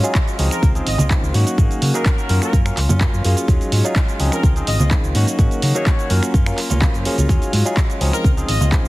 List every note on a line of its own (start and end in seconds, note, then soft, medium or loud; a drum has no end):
0.00 0.13 F#3 medium
0.00 0.15 F#3 loud
0.00 0.14 G#3 medium
0.00 0.14 C#4 medium
0.00 0.15 C#4 medium
0.00 0.15 D#4 medium
0.00 0.15 F4 medium
0.00 closed hi-hat medium
0.04 0.15 G#4 loud
0.04 cabasa medium
0.14 0.37 F#3 medium
0.14 0.38 G#3 medium
0.14 0.38 C#4 loud
0.14 0.39 F4 loud
0.14 kick loud
0.14 clap loud
0.14 closed hi-hat medium
0.14 cabasa medium
0.27 closed hi-hat soft
0.27 cabasa soft
0.38 0.47 C#2 medium
0.38 0.72 F3 medium
0.38 0.51 F#3 medium
0.38 0.51 G#3 medium
0.38 0.72 C4 medium
0.38 0.72 C#4 medium
0.38 0.50 C#4 medium
0.38 0.72 D#4 medium
0.38 0.49 F4 medium
0.38 0.72 G#4 medium
0.38 open hi-hat medium
0.51 0.61 G#3 soft
0.51 0.63 C#4 medium
0.51 0.62 F4 medium
0.51 0.68 A#4 medium
0.51 finger snap medium
0.51 closed hi-hat medium
0.51 cabasa medium
0.62 0.79 C#2 medium
0.62 0.75 D#3 medium
0.62 0.75 G#3 medium
0.62 0.74 C4 medium
0.62 0.73 F4 loud
0.62 kick loud
0.62 closed hi-hat medium
0.62 cabasa medium
0.75 0.86 F3 medium
0.75 0.99 G#3 medium
0.75 0.87 C4 medium
0.75 0.98 C4 medium
0.75 0.87 C#4 medium
0.75 0.87 D#4 medium
0.75 0.97 F4 medium
0.75 0.87 G#4 medium
0.75 closed hi-hat soft
0.75 cabasa soft
0.86 0.95 G#1 loud
0.86 1.06 D#5 medium
0.86 open hi-hat loud
0.98 1.14 C#2 medium
0.98 1.10 G#3 medium
0.98 1.10 C4 medium
0.98 1.10 F4 medium
0.98 closed hi-hat medium
0.98 high conga medium
0.98 cabasa medium
0.98 shaker medium
1.10 1.33 D#3 medium
1.10 1.23 F3 medium
1.10 1.34 G#3 medium
1.10 1.23 C4 medium
1.10 1.35 C4 loud
1.10 1.23 C#4 medium
1.10 1.23 D#4 medium
1.10 1.23 G#4 medium
1.10 kick loud
1.10 clap loud
1.10 closed hi-hat medium
1.10 cabasa medium
1.10 shaker medium
1.23 1.30 C#2 medium
1.23 cabasa soft
1.34 1.42 G#2 medium
1.34 1.47 D#3 medium
1.34 1.55 F#3 medium
1.34 1.55 A#3 medium
1.34 1.47 A#3 medium
1.34 1.55 C#4 medium
1.34 1.46 C#4 medium
1.34 1.55 D#4 medium
1.34 1.55 F#4 medium
1.34 1.45 F#4 medium
1.34 open hi-hat medium
1.46 1.57 A#3 soft
1.46 1.57 C#4 medium
1.46 1.58 F#4 medium
1.46 closed hi-hat medium
1.46 cabasa medium
1.46 shaker medium
1.58 1.66 G#2 medium
1.58 1.80 D#3 medium
1.58 1.91 F#3 medium
1.58 1.91 A#3 medium
1.58 1.91 C#4 medium
1.58 1.81 C#4 loud
1.58 1.92 D#4 medium
1.58 1.82 F#4 loud
1.58 1.92 G#4 medium
1.58 kick loud
1.58 closed hi-hat medium
1.58 cabasa soft
1.71 closed hi-hat soft
1.71 cabasa soft
1.71 shaker soft
1.81 1.90 C#3 loud
1.81 2.04 D#3 medium
1.81 2.05 A#3 medium
1.81 2.05 C#4 medium
1.81 2.05 F#4 medium
1.81 open hi-hat loud
1.94 2.06 F#3 medium
1.94 2.06 A#3 medium
1.94 2.06 C#4 medium
1.94 2.06 D#4 medium
1.94 2.06 G#4 loud
1.94 2.40 A#4 medium
1.94 closed hi-hat medium
1.94 cabasa medium
2.06 kick loud
2.06 clap loud
2.06 closed hi-hat medium
2.06 cabasa medium
2.18 closed hi-hat soft
2.18 cabasa soft
2.29 2.38 F#2 medium
2.29 2.42 D#3 medium
2.29 2.63 F#3 medium
2.29 2.63 A#3 medium
2.29 2.42 A#3 medium
2.29 2.63 C#4 medium
2.29 2.41 C#4 medium
2.29 2.63 F4 medium
2.29 2.40 F#4 medium
2.29 2.63 A#4 medium
2.29 open hi-hat medium
2.42 2.52 A#3 soft
2.42 2.53 C#4 medium
2.42 2.53 F#4 medium
2.42 2.58 A#4 loud
2.42 finger snap medium
2.42 closed hi-hat medium
2.42 cabasa medium
2.42 shaker medium
2.53 2.69 F#2 medium
2.53 2.66 A#3 medium
2.53 2.64 F4 loud
2.53 kick loud
2.53 closed hi-hat medium
2.53 cabasa medium
2.65 2.77 F#3 medium
2.65 2.77 A#3 medium
2.65 2.77 C#4 medium
2.65 2.90 C#4 soft
2.65 2.88 F4 medium
2.65 2.77 F4 medium
2.65 2.77 A#4 medium
2.65 finger snap medium
2.65 closed hi-hat soft
2.65 cabasa soft
2.77 2.85 C#2 loud
2.77 clap soft
2.77 open hi-hat loud
2.89 3.05 F#2 medium
2.89 3.00 C#4 medium
2.89 3.01 F4 medium
2.89 closed hi-hat medium
2.89 high conga medium
2.89 cabasa medium
2.89 shaker medium
3.01 3.13 F#3 medium
3.01 3.23 A#3 medium
3.01 3.13 A#3 medium
3.01 3.13 C#4 medium
3.01 3.14 F4 medium
3.01 3.14 A#4 medium
3.01 kick loud
3.01 clap loud
3.01 closed hi-hat medium
3.01 cabasa medium
3.13 3.21 F#2 medium
3.13 cabasa soft
3.13 shaker soft
3.24 3.33 F#2 medium
3.24 3.46 F#3 medium
3.24 3.37 A#3 medium
3.24 3.46 A#3 medium
3.24 3.46 C#4 medium
3.24 3.37 C#4 medium
3.24 3.46 F4 medium
3.24 3.35 F4 medium
3.24 3.46 G#4 medium
3.24 open hi-hat medium
3.36 3.48 C#4 medium
3.36 3.48 F4 medium
3.36 closed hi-hat medium
3.36 cabasa medium
3.36 shaker medium
3.48 3.56 D#2 medium
3.48 3.71 F#3 medium
3.48 3.82 F#3 medium
3.48 3.71 G#3 medium
3.48 3.82 C#4 medium
3.48 3.72 C#4 loud
3.48 3.82 D#4 medium
3.48 3.82 F4 medium
3.48 3.72 F4 loud
3.48 3.82 G#4 medium
3.48 kick loud
3.48 closed hi-hat medium
3.48 cabasa soft
3.61 closed hi-hat soft
3.61 cabasa soft
3.61 shaker soft
3.72 3.80 G#2 loud
3.72 3.94 F#3 medium
3.72 3.95 G#3 medium
3.72 3.95 C#4 medium
3.72 3.96 F4 medium
3.72 open hi-hat loud
3.84 3.96 F#3 loud
3.84 3.96 C#4 medium
3.84 3.96 D#4 medium
3.84 3.96 F4 medium
3.84 3.96 G#4 loud
3.84 closed hi-hat medium
3.84 cabasa medium
3.84 shaker medium
3.96 kick loud
3.96 clap loud
3.96 closed hi-hat medium
3.96 cabasa soft
4.08 closed hi-hat soft
4.08 cabasa soft
4.19 4.28 C#2 medium
4.19 4.53 F3 medium
4.19 4.32 F#3 medium
4.19 4.33 G#3 medium
4.19 4.53 C4 medium
4.19 4.53 C#4 medium
4.19 4.31 C#4 medium
4.19 4.53 D#4 medium
4.19 4.30 F4 medium
4.19 4.53 G#4 loud
4.19 open hi-hat loud
4.32 4.43 G#3 soft
4.32 4.44 C#4 medium
4.32 4.43 F4 medium
4.32 4.49 A#4 medium
4.32 finger snap medium
4.32 closed hi-hat medium
4.32 cabasa medium
4.32 shaker medium
4.43 4.60 C#2 medium
4.43 4.56 D#3 medium
4.43 4.56 G#3 medium
4.43 4.56 C4 medium
4.43 4.54 F4 medium
4.43 kick loud
4.43 closed hi-hat medium
4.43 cabasa medium
4.56 4.67 F3 medium
4.56 4.80 G#3 medium
4.56 4.67 C4 medium
4.56 4.79 C4 medium
4.56 4.68 C#4 medium
4.56 4.68 D#4 medium
4.56 4.78 F4 medium
4.56 4.68 G#4 medium
4.56 closed hi-hat soft
4.56 cabasa soft
4.56 shaker soft
4.67 4.76 G#1 loud
4.67 4.87 D#5 medium
4.67 open hi-hat loud
4.80 4.95 C#2 medium
4.80 4.91 G#3 medium
4.80 4.91 C4 medium
4.80 4.91 F4 medium
4.80 closed hi-hat medium
4.80 high conga medium
4.80 cabasa medium
4.80 shaker medium
4.91 5.14 D#3 medium
4.91 5.04 F3 medium
4.91 5.15 G#3 medium
4.91 5.04 C4 medium
4.91 5.04 C#4 medium
4.91 5.04 D#4 medium
4.91 5.16 F4 loud
4.91 5.04 G#4 medium
4.91 kick loud
4.91 clap loud
4.91 closed hi-hat medium
4.91 cabasa soft
5.03 5.11 C#2 medium
5.03 cabasa soft
5.03 shaker soft
5.15 5.23 G#2 medium
5.15 5.27 D#3 medium
5.15 5.36 F#3 medium
5.15 5.36 A#3 medium
5.15 5.28 A#3 medium
5.15 5.36 C#4 medium
5.15 5.27 C#4 medium
5.15 5.36 D#4 medium
5.15 5.36 F#4 medium
5.15 5.26 F#4 medium
5.15 open hi-hat medium
5.27 5.38 A#3 medium
5.27 5.38 C#4 medium
5.27 5.39 F#4 medium
5.27 closed hi-hat medium
5.27 cabasa medium
5.27 shaker medium
5.39 5.47 G#2 medium
5.39 5.61 D#3 medium
5.39 5.72 F#3 medium
5.39 5.72 A#3 medium
5.39 5.62 A#3 loud
5.39 5.72 C#4 medium
5.39 5.62 C#4 medium
5.39 5.72 D#4 medium
5.39 5.63 F#4 loud
5.39 5.72 G#4 medium
5.39 kick loud
5.39 closed hi-hat medium
5.39 cabasa medium
5.51 closed hi-hat soft
5.51 cabasa soft
5.51 shaker soft
5.62 5.71 C#3 loud
5.62 5.85 D#3 medium
5.62 5.85 A#3 medium
5.62 5.86 C#4 medium
5.62 5.86 F#4 medium
5.62 open hi-hat loud
5.75 5.86 F#3 medium
5.75 5.86 A#3 medium
5.75 5.87 C#4 medium
5.75 5.87 D#4 medium
5.75 5.87 G#4 loud
5.75 6.10 C#5 medium
5.75 closed hi-hat soft
5.75 cabasa medium
5.75 shaker medium
5.86 6.08 D#3 medium
5.86 6.09 A#3 medium
5.86 6.10 C#4 medium
5.86 6.10 F#4 loud
5.86 kick loud
5.86 clap loud
5.86 closed hi-hat medium
5.86 cabasa medium
5.99 closed hi-hat soft
5.99 cabasa soft
5.99 shaker soft
6.10 6.18 F#2 medium
6.10 6.22 D#3 medium
6.10 6.43 F#3 medium
6.10 6.44 A#3 medium
6.10 6.23 A#3 medium
6.10 6.44 C#4 medium
6.10 6.22 C#4 medium
6.10 6.44 F4 medium
6.10 6.21 F#4 medium
6.10 6.44 A#4 medium
6.10 open hi-hat loud
6.22 6.33 A#3 soft
6.22 6.33 C#4 medium
6.22 6.34 F#4 medium
6.22 finger snap medium
6.22 closed hi-hat medium
6.22 cabasa medium
6.22 shaker medium
6.34 6.50 F#2 medium
6.34 6.46 F3 medium
6.34 6.47 A#3 medium
6.34 6.46 C#4 medium
6.34 6.45 F4 medium
6.34 kick loud
6.34 closed hi-hat medium
6.34 cabasa medium
6.34 shaker medium
6.46 6.58 F#3 medium
6.46 6.58 A#3 medium
6.46 6.71 A#3 soft
6.46 6.58 C#4 medium
6.46 6.70 C#4 medium
6.46 6.69 F4 medium
6.46 6.58 F4 medium
6.46 6.58 A#4 medium
6.46 finger snap medium
6.46 closed hi-hat soft
6.46 cabasa soft
6.58 clap soft
6.58 open hi-hat loud
6.70 6.86 C#2 medium
6.70 6.80 A#3 medium
6.70 6.81 C#4 medium
6.70 6.81 F4 medium
6.70 closed hi-hat medium
6.70 high conga medium
6.70 cabasa medium
6.70 shaker medium
6.81 6.94 F#3 medium
6.81 6.94 A#3 medium
6.81 6.94 C#4 medium
6.81 7.05 C#4 medium
6.81 6.94 F4 medium
6.81 6.95 A#4 medium
6.81 kick loud
6.81 clap loud
6.81 closed hi-hat medium
6.81 cabasa medium
6.81 shaker medium
6.94 7.05 F#1 medium
6.94 closed hi-hat soft
6.94 cabasa soft
6.94 shaker soft
7.05 7.18 F3 medium
7.05 7.27 F#3 medium
7.05 7.18 A#3 medium
7.05 7.27 A#3 medium
7.05 7.27 C#4 medium
7.05 7.17 C#4 medium
7.05 7.27 F4 medium
7.05 7.16 F4 medium
7.05 7.27 G#4 medium
7.05 muted fingered electric bass stroke soft
7.05 open hi-hat medium
7.17 7.25 C#2 medium
7.17 7.29 A#3 soft
7.17 7.29 C#4 medium
7.17 7.29 F4 medium
7.17 closed hi-hat medium
7.17 high conga medium
7.17 cabasa medium
7.17 shaker medium
7.29 7.51 F#3 medium
7.29 7.63 F#3 medium
7.29 7.52 G#3 medium
7.29 7.63 C#4 medium
7.29 7.53 C#4 loud
7.29 7.63 D#4 medium
7.29 7.63 F4 medium
7.29 7.53 F4 loud
7.29 7.63 G#4 medium
7.29 kick loud
7.29 closed hi-hat medium
7.29 cabasa medium
7.29 shaker medium
7.42 closed hi-hat soft
7.42 cabasa soft
7.42 shaker soft
7.52 7.61 G#2 loud
7.52 7.75 F#3 medium
7.52 7.76 G#3 medium
7.52 7.76 C#4 medium
7.52 7.77 F4 medium
7.52 open hi-hat loud
7.65 7.77 F#3 medium
7.65 7.77 C#4 medium
7.65 7.77 D#4 medium
7.65 7.77 F4 medium
7.65 7.77 G#4 loud
7.65 closed hi-hat soft
7.65 cabasa medium
7.65 shaker medium
7.77 kick loud
7.77 clap loud
7.77 closed hi-hat medium
7.77 cabasa medium
7.90 closed hi-hat soft
7.90 cabasa soft
7.90 shaker soft
8.00 8.09 C#2 medium
8.00 8.34 F3 medium
8.00 8.13 F#3 medium
8.00 8.13 G#3 medium
8.00 8.34 C4 medium
8.00 8.34 C#4 medium
8.00 8.13 C#4 medium
8.00 8.34 D#4 medium
8.00 8.12 F4 medium
8.00 8.34 G#4 medium
8.00 open hi-hat medium
8.13 8.24 G#3 soft
8.13 8.25 C#4 medium
8.13 8.24 F4 medium
8.13 8.30 A#4 medium
8.13 finger snap medium
8.13 closed hi-hat soft
8.13 cabasa medium
8.13 shaker medium
8.24 8.41 C#2 medium
8.24 8.37 D#3 medium
8.24 8.37 G#3 medium
8.24 8.36 C4 medium
8.24 8.35 F4 medium
8.24 kick loud
8.24 closed hi-hat medium
8.24 cabasa medium
8.37 8.48 F3 medium
8.37 8.61 G#3 soft
8.37 8.48 C4 medium
8.37 8.60 C4 medium
8.37 8.49 C#4 medium
8.37 8.49 D#4 medium
8.37 8.59 F4 medium
8.37 8.49 G#4 medium
8.37 closed hi-hat soft
8.37 cabasa soft
8.37 shaker soft
8.48 8.57 G#1 loud
8.48 8.67 D#5 medium
8.48 open hi-hat loud
8.60 8.76 C#2 medium
8.60 8.71 G#3 medium
8.60 8.72 C4 medium
8.60 8.72 F4 medium
8.60 closed hi-hat medium
8.60 high conga medium
8.60 cabasa medium
8.60 shaker medium
8.72 8.88 D#3 medium
8.72 8.85 F3 medium
8.72 8.85 C4 medium
8.72 8.88 C4 medium
8.72 8.85 C#4 medium
8.72 8.85 D#4 medium
8.72 8.85 G#4 medium
8.72 kick loud
8.72 clap loud
8.72 closed hi-hat medium
8.72 cabasa medium
8.84 8.88 C#2 medium
8.84 shaker soft